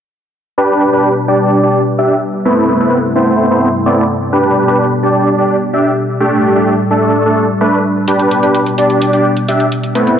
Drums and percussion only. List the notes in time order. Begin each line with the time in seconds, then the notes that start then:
8.08 closed hi-hat
8.20 closed hi-hat
8.31 closed hi-hat
8.43 closed hi-hat
8.55 closed hi-hat
8.66 closed hi-hat
8.78 closed hi-hat
8.90 closed hi-hat
9.02 closed hi-hat
9.13 closed hi-hat
9.37 closed hi-hat
9.48 closed hi-hat
9.60 closed hi-hat
9.72 closed hi-hat
9.84 closed hi-hat
9.95 closed hi-hat
10.07 closed hi-hat